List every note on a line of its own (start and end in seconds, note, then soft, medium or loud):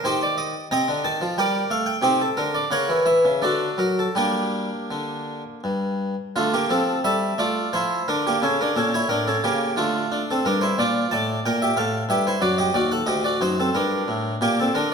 0.04 0.53 D#3 medium
0.04 0.21 D#4 medium
0.04 0.21 G4 medium
0.04 0.22 C5 loud
0.23 0.39 D5 medium
0.38 0.67 D#5 medium
0.71 0.88 C3 medium
0.71 1.04 D#5 medium
0.71 1.03 G5 medium
0.71 1.05 A#5 loud
0.88 1.05 D3 medium
1.04 1.21 D#3 medium
1.04 1.33 A5 medium
1.21 1.37 F3 medium
1.38 1.62 G3 medium
1.38 1.69 A#4 medium
1.38 1.69 D5 medium
1.38 1.71 G5 medium
1.71 1.95 A3 medium
1.71 1.88 F5 medium
1.86 2.04 G5 medium
2.02 2.27 C3 medium
2.02 2.19 C4 medium
2.02 2.20 D#4 medium
2.02 2.20 G4 medium
2.22 2.38 A4 medium
2.37 2.63 D3 medium
2.37 2.55 A#4 medium
2.55 2.72 D5 medium
2.71 2.88 C#3 medium
2.71 3.05 A#4 medium
2.71 3.05 C#5 medium
2.71 3.02 F#5 medium
2.89 3.04 E3 medium
3.06 3.24 E3 soft
3.06 3.43 E5 medium
3.25 3.42 C#3 soft
3.42 3.69 D3 soft
3.42 3.78 F#4 medium
3.42 3.77 A4 medium
3.42 3.80 D5 medium
3.78 4.06 F#3 soft
3.78 3.98 A#4 medium
3.99 4.18 A4 medium
4.15 4.68 G3 soft
4.15 5.60 A#3 medium
4.15 5.60 D4 soft
4.15 5.41 G4 medium
4.91 5.42 D3 soft
5.64 6.14 G2 soft
6.36 6.63 D3 medium
6.36 6.52 A3 medium
6.36 6.53 F4 loud
6.54 6.69 A#3 medium
6.54 6.70 G4 medium
6.70 6.97 F3 medium
6.70 7.02 C4 medium
6.70 6.99 A4 medium
7.04 7.31 G3 medium
7.04 7.37 A4 medium
7.04 7.38 E5 loud
7.38 7.65 A3 medium
7.38 7.70 F4 medium
7.38 7.72 D5 medium
7.73 8.00 F3 medium
7.73 8.05 E4 medium
7.73 8.07 C5 medium
8.08 8.35 D3 medium
8.08 8.24 D4 medium
8.08 8.24 A#4 medium
8.27 8.42 A#3 medium
8.27 8.42 G4 medium
8.42 8.69 C#3 medium
8.42 8.58 C#4 medium
8.42 8.59 A4 loud
8.61 8.76 D4 medium
8.61 8.76 A#4 medium
8.76 9.02 A#2 medium
8.76 8.92 C#4 medium
8.76 8.92 A4 medium
8.94 9.09 E4 medium
8.94 9.10 C#5 medium
9.09 9.35 A2 medium
9.09 9.25 D4 medium
9.09 9.25 A#4 medium
9.28 9.42 C#4 medium
9.28 9.43 A4 medium
9.44 9.70 C#3 soft
9.44 9.75 A#3 medium
9.44 9.77 G4 medium
9.76 10.03 D3 medium
9.76 10.24 A3 medium
9.76 10.20 F4 medium
10.12 10.38 D4 medium
10.31 10.45 C4 medium
10.31 10.45 A4 medium
10.45 10.71 G2 medium
10.45 10.61 D4 medium
10.45 10.61 A#4 loud
10.61 10.77 E4 medium
10.61 10.77 C5 medium
10.78 11.04 A#2 medium
10.78 11.09 F4 medium
10.78 11.11 D5 medium
11.11 11.37 A2 medium
11.11 11.42 D5 medium
11.11 11.39 A5 loud
11.46 11.70 A#2 soft
11.46 11.60 A#4 medium
11.46 11.60 G5 medium
11.62 11.76 G4 medium
11.62 11.77 E5 medium
11.77 12.02 A2 medium
11.77 12.07 A4 medium
11.77 12.04 F5 medium
12.09 12.34 G2 soft
12.09 12.24 G4 medium
12.09 12.25 E5 medium
12.27 12.41 E4 medium
12.27 12.41 C5 medium
12.41 12.67 F#2 medium
12.41 12.56 F#4 medium
12.41 12.57 D5 loud
12.58 12.73 G4 medium
12.58 12.74 D#5 medium
12.74 13.00 D#2 medium
12.74 12.90 F#4 medium
12.74 12.90 D5 medium
12.92 13.06 A4 medium
12.92 13.07 F#5 medium
13.06 13.33 D2 soft
13.06 13.22 G4 medium
13.06 13.23 D#5 medium
13.24 13.40 F#4 medium
13.24 13.40 D5 medium
13.41 13.67 F#2 medium
13.41 13.56 D#4 medium
13.41 13.57 C5 medium
13.60 13.74 C4 medium
13.60 13.74 A4 medium
13.74 14.01 G2 medium
13.74 14.37 D4 medium
13.74 14.31 A#4 medium
14.08 14.34 A2 medium
14.41 14.67 A#2 medium
14.41 14.57 A#3 medium
14.41 14.57 G4 loud
14.60 14.74 C4 soft
14.60 14.75 A4 medium
14.74 14.94 D3 medium
14.74 14.91 D4 medium
14.74 14.91 A#4 medium